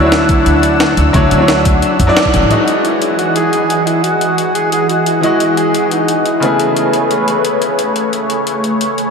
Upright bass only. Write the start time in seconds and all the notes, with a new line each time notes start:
Already playing: D2
0.46 D2
0.97 D2
1.14 D2
1.31 D2
1.99 F#2
2.34 A1
2.43 A1